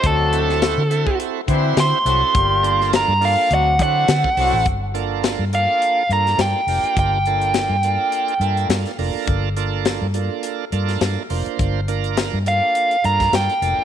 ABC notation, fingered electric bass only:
X:1
M:4/4
L:1/16
Q:"Swing 16ths" 1/4=104
K:Gdor
V:1 name="Fingered electric bass" clef=bass
D,,4- D,, D,2 z3 D,2 D, z C,, z | G,,,4- G,,, G,,2 z D,,2 D,2 D, z C,, A,,, | G,,,4- G,,, G,,2 z3 G,,2 G,, z F,,, z | G,,,4- G,,, G,,2 z3 G,,2 G,, z F,,, z |
G,,,4- G,,, G,,2 z3 G,,2 G,, z F,,, z | G,,,4- G,,, G,,2 z3 G,,2 G,, z F,,, z |]